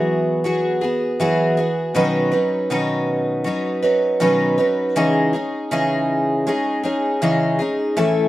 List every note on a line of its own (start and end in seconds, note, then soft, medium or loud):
0.00 0.45 E3 medium
0.00 0.44 F#3 medium
0.00 0.45 B3 medium
0.00 0.45 F#4 medium
0.00 0.46 G#4 medium
0.44 0.83 F#3 medium
0.44 0.83 B3 medium
0.44 0.82 F#4 medium
0.44 0.80 G#4 medium
0.81 1.19 B3 soft
0.81 1.20 F#4 soft
0.81 1.20 G#4 medium
1.20 1.58 E3 medium
1.20 1.58 F#3 medium
1.20 1.58 B3 medium
1.20 1.57 F#4 medium
1.20 1.56 G#4 medium
1.57 1.96 B3 soft
1.57 1.96 F#4 soft
1.57 1.96 G#4 soft
1.95 2.33 B2 medium
1.95 2.33 D#3 medium
1.95 2.33 F#3 medium
1.95 2.32 C#4 medium
1.95 2.32 D#4 medium
1.95 2.30 B4 medium
2.32 2.70 F#3 soft
2.32 2.70 C#4 soft
2.32 2.71 D#4 soft
2.32 2.70 B4 soft
2.70 3.46 B2 medium
2.70 3.49 D#3 medium
2.70 3.43 F#3 medium
2.70 3.45 C#4 medium
2.70 3.46 D#4 medium
2.70 3.46 B4 medium
3.44 3.83 F#3 medium
3.44 3.83 C#4 medium
3.44 3.82 D#4 medium
3.44 3.81 B4 medium
3.82 4.20 F#3 soft
3.82 4.20 C#4 soft
3.82 4.20 D#4 soft
3.82 4.21 B4 soft
4.20 4.59 B2 medium
4.20 4.59 D#3 medium
4.20 4.59 F#3 medium
4.20 4.58 C#4 medium
4.20 4.57 D#4 medium
4.20 4.57 B4 medium
4.58 4.96 F#3 soft
4.58 4.95 C#4 soft
4.58 4.96 D#4 soft
4.58 4.96 B4 soft
4.96 5.34 C#3 medium
4.96 5.34 E3 medium
4.96 5.34 G#3 medium
4.96 5.34 C#4 medium
4.96 5.33 D#4 medium
4.96 5.32 G#4 medium
5.33 5.71 G#3 soft
5.33 5.71 C#4 soft
5.33 5.72 D#4 soft
5.33 5.71 G#4 soft
5.71 6.47 C#3 medium
5.71 6.51 E3 medium
5.71 6.45 G#3 medium
5.71 6.47 C#4 medium
5.71 6.47 D#4 medium
5.71 6.48 G#4 medium
6.47 6.84 G#3 medium
6.47 6.84 C#4 medium
6.47 6.83 D#4 medium
6.47 6.82 G#4 medium
6.84 7.21 G#3 soft
6.84 7.22 C#4 soft
6.84 7.22 D#4 soft
6.84 7.22 G#4 medium
7.22 7.59 C#3 medium
7.22 7.60 E3 medium
7.22 7.60 G#3 medium
7.22 7.60 C#4 medium
7.22 7.59 D#4 medium
7.22 7.58 G#4 medium
7.59 7.97 G#3 soft
7.59 7.96 C#4 soft
7.59 7.97 D#4 soft
7.59 7.97 G#4 medium
7.97 8.28 A2 medium
7.97 8.28 E3 medium
7.97 8.28 A3 medium
7.97 8.28 C#4 medium
7.97 8.28 E4 medium
7.97 8.28 A4 medium